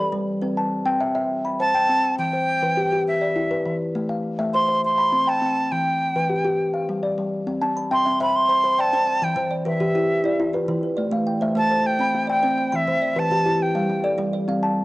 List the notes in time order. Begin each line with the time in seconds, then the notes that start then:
Already playing: G3 A4 B4 D5 B5
0.12 G3
0.41 C4 B4
0.57 A5
0.86 C4 G5
1.01 E5
1.15 E5
1.45 B5
1.60 C5 A5
1.74 G5
1.89 C4
2.19 E3 G5
2.33 C5
2.63 E3 B4
2.77 G4
2.92 G4
3.08 E5
3.21 D5
3.36 E4
3.51 B4
3.66 E3
3.95 A3
4.09 F5
4.39 A3 E5
4.54 C5 C6
4.68 C5
4.85 C6
4.98 B5
5.12 C4
5.27 G5 A5
5.42 C4
5.72 E3 G5
6.16 E3 B4
6.30 G4
6.45 G4
6.74 F5
6.89 G3
7.03 D5
7.18 G3
7.47 C4
7.61 C4 A5
7.77 B5
7.91 C4 E5 G5 C6
8.05 C4 E5
8.20 C5 E5 B5
8.36 C6
8.49 C5 B5
8.64 C5
8.79 D5 G5 A5
8.93 C4 C5
9.07 G5
9.22 E3 G5 B5
9.36 E3 C5
9.51 D5
9.65 E3 G4 B4 E5
9.80 E3 G4
9.95 E4 G4
10.24 E4 D5
10.40 E4
10.53 F4 B4
10.68 E3
10.83 B4
10.97 A3 D5
11.11 A3 F5
11.27 G5
11.41 A3 C5 E5
11.55 A3 C5 A5
11.70 A4 C5
11.86 G5
11.99 C4 B5
12.15 C4
12.27 D5 G5
12.43 C4 C5
12.58 G5
12.72 E3 E5 B5
12.88 E3 C5
13.02 D5
13.16 E3 G4 B4 A5
13.31 E3 G4
13.46 E4 G4
13.63 G5
13.75 G3 F5
13.90 G3
14.04 A4 D5
14.18 G3 G4
14.33 D5
14.48 C4 F5
14.63 A5